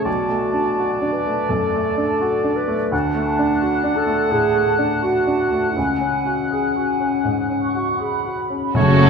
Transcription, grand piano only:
0, 0, Header, 1, 2, 480
1, 0, Start_track
1, 0, Tempo, 709220
1, 45, Time_signature, 4, 2, 24, 8
1, 3404, Tempo, 744417
1, 6027, End_track
2, 0, Start_track
2, 0, Title_t, "Grand piano"
2, 0, Program_c, 0, 0
2, 0, Control_c, 0, 64, 127
2, 37, Note_on_c, 0, 35, 42
2, 59, Control_c, 0, 64, 0
2, 175, Control_c, 0, 64, 127
2, 199, Note_on_c, 0, 57, 31
2, 360, Note_on_c, 0, 62, 30
2, 464, Note_off_c, 0, 57, 0
2, 530, Note_on_c, 0, 66, 31
2, 625, Note_off_c, 0, 62, 0
2, 688, Note_on_c, 0, 62, 34
2, 790, Note_off_c, 0, 66, 0
2, 855, Note_on_c, 0, 57, 28
2, 947, Note_off_c, 0, 62, 0
2, 984, Note_off_c, 0, 35, 0
2, 1010, Note_on_c, 0, 42, 39
2, 1111, Note_off_c, 0, 57, 0
2, 1174, Note_on_c, 0, 57, 36
2, 1270, Note_off_c, 0, 42, 0
2, 1335, Note_on_c, 0, 62, 39
2, 1433, Note_off_c, 0, 57, 0
2, 1493, Note_on_c, 0, 66, 39
2, 1594, Note_off_c, 0, 62, 0
2, 1651, Note_on_c, 0, 62, 42
2, 1753, Note_off_c, 0, 66, 0
2, 1812, Note_on_c, 0, 57, 37
2, 1910, Note_off_c, 0, 62, 0
2, 1974, Note_on_c, 0, 38, 48
2, 1975, Note_off_c, 0, 57, 0
2, 1991, Control_c, 0, 64, 0
2, 2089, Control_c, 0, 64, 127
2, 2129, Note_on_c, 0, 57, 39
2, 2293, Note_on_c, 0, 62, 40
2, 2381, Note_off_c, 0, 57, 0
2, 2447, Note_on_c, 0, 66, 40
2, 2541, Note_off_c, 0, 62, 0
2, 2596, Note_on_c, 0, 62, 43
2, 2697, Note_off_c, 0, 66, 0
2, 2749, Note_on_c, 0, 57, 40
2, 2853, Note_off_c, 0, 62, 0
2, 2891, Note_off_c, 0, 38, 0
2, 2916, Note_on_c, 0, 45, 40
2, 3010, Note_off_c, 0, 57, 0
2, 3075, Note_on_c, 0, 57, 37
2, 3175, Note_off_c, 0, 45, 0
2, 3237, Note_on_c, 0, 62, 36
2, 3337, Note_off_c, 0, 57, 0
2, 3400, Note_on_c, 0, 66, 36
2, 3495, Note_off_c, 0, 62, 0
2, 3559, Note_on_c, 0, 62, 34
2, 3652, Note_off_c, 0, 66, 0
2, 3717, Note_on_c, 0, 57, 32
2, 3811, Note_off_c, 0, 62, 0
2, 3876, Note_off_c, 0, 57, 0
2, 3877, Note_on_c, 0, 37, 37
2, 3889, Control_c, 0, 64, 0
2, 3982, Control_c, 0, 64, 127
2, 4033, Note_on_c, 0, 61, 25
2, 4193, Note_on_c, 0, 66, 25
2, 4293, Note_off_c, 0, 61, 0
2, 4357, Note_on_c, 0, 68, 29
2, 4453, Note_off_c, 0, 66, 0
2, 4520, Note_on_c, 0, 66, 25
2, 4615, Note_off_c, 0, 68, 0
2, 4675, Note_on_c, 0, 61, 26
2, 4776, Note_off_c, 0, 66, 0
2, 4815, Note_off_c, 0, 37, 0
2, 4832, Note_on_c, 0, 44, 25
2, 4934, Note_off_c, 0, 61, 0
2, 4993, Note_on_c, 0, 61, 23
2, 5092, Note_off_c, 0, 44, 0
2, 5156, Note_on_c, 0, 66, 25
2, 5253, Note_off_c, 0, 61, 0
2, 5311, Note_on_c, 0, 68, 26
2, 5415, Note_off_c, 0, 66, 0
2, 5480, Note_on_c, 0, 66, 23
2, 5576, Note_off_c, 0, 68, 0
2, 5641, Note_on_c, 0, 61, 24
2, 5741, Note_off_c, 0, 66, 0
2, 5803, Note_on_c, 0, 42, 48
2, 5804, Note_off_c, 0, 61, 0
2, 5819, Control_c, 0, 64, 0
2, 5936, Control_c, 0, 64, 127
2, 5964, Note_on_c, 0, 57, 40
2, 6027, Note_off_c, 0, 42, 0
2, 6027, Note_off_c, 0, 57, 0
2, 6027, End_track
0, 0, End_of_file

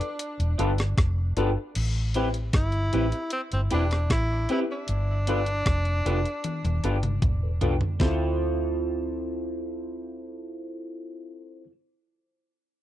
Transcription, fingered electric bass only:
0, 0, Header, 1, 2, 480
1, 0, Start_track
1, 0, Tempo, 780234
1, 1079, Time_signature, 4, 2, 24, 8
1, 7890, End_track
2, 0, Start_track
2, 0, Title_t, "Fingered electric bass"
2, 0, Program_c, 0, 33
2, 242, Note_on_c, 0, 28, 95
2, 349, Note_off_c, 0, 28, 0
2, 364, Note_on_c, 0, 31, 86
2, 581, Note_off_c, 0, 31, 0
2, 603, Note_on_c, 0, 29, 83
2, 821, Note_off_c, 0, 29, 0
2, 841, Note_on_c, 0, 31, 92
2, 952, Note_off_c, 0, 31, 0
2, 1084, Note_on_c, 0, 33, 101
2, 1537, Note_off_c, 0, 33, 0
2, 1561, Note_on_c, 0, 31, 96
2, 1780, Note_off_c, 0, 31, 0
2, 1806, Note_on_c, 0, 33, 89
2, 1915, Note_off_c, 0, 33, 0
2, 2171, Note_on_c, 0, 31, 78
2, 2275, Note_off_c, 0, 31, 0
2, 2292, Note_on_c, 0, 28, 88
2, 2506, Note_off_c, 0, 28, 0
2, 2524, Note_on_c, 0, 33, 80
2, 2742, Note_off_c, 0, 33, 0
2, 3007, Note_on_c, 0, 31, 100
2, 3459, Note_off_c, 0, 31, 0
2, 3486, Note_on_c, 0, 29, 102
2, 3703, Note_off_c, 0, 29, 0
2, 3727, Note_on_c, 0, 29, 81
2, 3836, Note_off_c, 0, 29, 0
2, 4087, Note_on_c, 0, 28, 89
2, 4193, Note_off_c, 0, 28, 0
2, 4207, Note_on_c, 0, 31, 90
2, 4424, Note_off_c, 0, 31, 0
2, 4445, Note_on_c, 0, 28, 89
2, 4663, Note_off_c, 0, 28, 0
2, 4686, Note_on_c, 0, 36, 77
2, 4796, Note_off_c, 0, 36, 0
2, 4924, Note_on_c, 0, 38, 94
2, 7159, Note_off_c, 0, 38, 0
2, 7890, End_track
0, 0, End_of_file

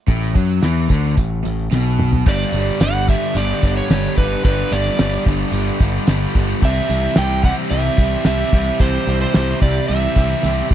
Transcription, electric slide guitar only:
0, 0, Header, 1, 2, 480
1, 0, Start_track
1, 0, Tempo, 545455
1, 70, Time_signature, 4, 2, 24, 8
1, 9456, End_track
2, 0, Start_track
2, 0, Title_t, "Electric slide guitar"
2, 0, Program_c, 0, 29
2, 2016, Note_on_c, 0, 74, 109
2, 2485, Note_on_c, 0, 78, 89
2, 2500, Note_off_c, 0, 74, 0
2, 2723, Note_off_c, 0, 78, 0
2, 2726, Note_on_c, 0, 76, 99
2, 2964, Note_on_c, 0, 74, 99
2, 2968, Note_off_c, 0, 76, 0
2, 3316, Note_off_c, 0, 74, 0
2, 3320, Note_on_c, 0, 73, 77
2, 3653, Note_off_c, 0, 73, 0
2, 3677, Note_on_c, 0, 71, 76
2, 3907, Note_off_c, 0, 71, 0
2, 3918, Note_on_c, 0, 71, 103
2, 4157, Note_on_c, 0, 74, 82
2, 4164, Note_off_c, 0, 71, 0
2, 4603, Note_off_c, 0, 74, 0
2, 5851, Note_on_c, 0, 76, 115
2, 6321, Note_on_c, 0, 79, 86
2, 6337, Note_off_c, 0, 76, 0
2, 6553, Note_off_c, 0, 79, 0
2, 6556, Note_on_c, 0, 78, 103
2, 6621, Note_off_c, 0, 78, 0
2, 6781, Note_on_c, 0, 76, 104
2, 7263, Note_off_c, 0, 76, 0
2, 7273, Note_on_c, 0, 76, 102
2, 7750, Note_on_c, 0, 72, 99
2, 7768, Note_off_c, 0, 76, 0
2, 8098, Note_off_c, 0, 72, 0
2, 8109, Note_on_c, 0, 72, 86
2, 8465, Note_off_c, 0, 72, 0
2, 8469, Note_on_c, 0, 74, 75
2, 8692, Note_off_c, 0, 74, 0
2, 8696, Note_on_c, 0, 76, 85
2, 9387, Note_off_c, 0, 76, 0
2, 9456, End_track
0, 0, End_of_file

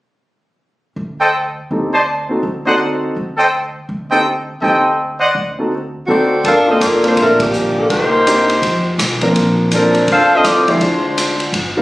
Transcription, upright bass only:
0, 0, Header, 1, 2, 480
1, 0, Start_track
1, 0, Key_signature, -2, "minor"
1, 0, Tempo, 364299
1, 805, Time_signature, 4, 2, 24, 8
1, 15573, End_track
2, 0, Start_track
2, 0, Title_t, "Upright bass"
2, 0, Program_c, 0, 32
2, 1269, Note_on_c, 0, 38, 68
2, 2043, Note_off_c, 0, 38, 0
2, 2247, Note_on_c, 0, 38, 65
2, 3013, Note_off_c, 0, 38, 0
2, 3199, Note_on_c, 0, 38, 67
2, 3969, Note_off_c, 0, 38, 0
2, 4168, Note_on_c, 0, 38, 64
2, 4934, Note_off_c, 0, 38, 0
2, 5122, Note_on_c, 0, 38, 74
2, 5891, Note_off_c, 0, 38, 0
2, 6086, Note_on_c, 0, 38, 68
2, 6853, Note_off_c, 0, 38, 0
2, 7046, Note_on_c, 0, 38, 72
2, 7813, Note_off_c, 0, 38, 0
2, 8013, Note_on_c, 0, 38, 65
2, 8458, Note_off_c, 0, 38, 0
2, 8482, Note_on_c, 0, 31, 74
2, 8932, Note_off_c, 0, 31, 0
2, 8968, Note_on_c, 0, 29, 72
2, 9415, Note_off_c, 0, 29, 0
2, 9445, Note_on_c, 0, 34, 75
2, 10358, Note_off_c, 0, 34, 0
2, 10407, Note_on_c, 0, 36, 78
2, 11319, Note_off_c, 0, 36, 0
2, 11356, Note_on_c, 0, 41, 71
2, 11807, Note_off_c, 0, 41, 0
2, 11831, Note_on_c, 0, 35, 70
2, 12284, Note_off_c, 0, 35, 0
2, 12316, Note_on_c, 0, 34, 75
2, 13232, Note_off_c, 0, 34, 0
2, 13279, Note_on_c, 0, 29, 76
2, 14193, Note_off_c, 0, 29, 0
2, 14235, Note_on_c, 0, 38, 77
2, 15150, Note_off_c, 0, 38, 0
2, 15185, Note_on_c, 0, 31, 74
2, 15573, Note_off_c, 0, 31, 0
2, 15573, End_track
0, 0, End_of_file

